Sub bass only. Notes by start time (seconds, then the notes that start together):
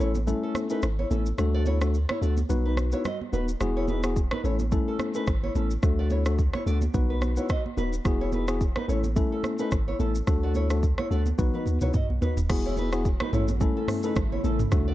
0.00 A1
0.83 G#1
1.11 A1
1.38 D2
2.22 D2
2.50 B1
3.33 D#1
3.61 E1
4.44 A1
5.27 G#1
5.55 A1
5.83 D2
6.66 D2
6.94 B1
7.77 D#1
8.05 E1
8.89 A1
9.72 G#1
10.00 A1
10.27 D2
11.11 D2
11.39 B1
11.66 D#2
11.81 C#2
12.09 B1
12.37 D#1
12.50 E1
13.33 A1
14.16 G#1
14.44 A1
14.72 D2